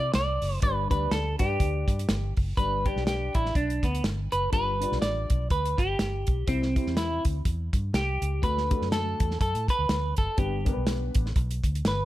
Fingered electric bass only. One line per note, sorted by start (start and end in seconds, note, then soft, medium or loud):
0.14 0.37 C2 medium
0.42 0.59 F#1 medium
0.63 0.86 G1 loud
0.91 1.08 D2 loud
1.11 1.34 D2 medium
1.40 1.56 G2 medium
1.60 1.83 D2 medium
1.88 2.05 G2 medium
2.09 2.32 G1 medium
2.38 2.54 F#1 medium
2.58 2.89 G1 medium
2.96 3.28 B1 medium
3.35 3.52 A1 medium
3.55 3.78 B1 medium
3.83 4.00 D2 medium
4.04 4.27 G1 medium
4.33 4.49 F#1 medium
4.53 4.84 G1 medium
4.92 5.00 B1 medium
5.02 5.25 A1 medium
5.31 5.47 B1 medium
5.51 5.74 D2 medium
5.78 5.95 G1 medium
6.00 6.23 G1 medium
6.28 6.45 B1 medium
6.47 6.79 C2 medium
6.86 7.18 E2 medium
7.25 7.42 D2 medium
7.45 7.69 E2 medium
7.73 7.90 G2 medium
7.93 8.17 C2 loud
8.22 8.39 C#2 medium
8.43 8.75 D2 medium
8.81 9.13 F#2 medium
9.21 9.37 E2 medium
9.41 9.52 F#2 medium
9.55 9.66 A2 medium
9.79 9.87 D2 medium
9.89 10.13 D2 medium
10.18 10.26 F#1 medium
10.38 10.70 G1 medium
10.77 11.08 B1 medium
11.16 11.32 A1 medium
11.36 11.59 B1 medium
11.63 11.80 D2 medium
11.85 12.05 G1 loud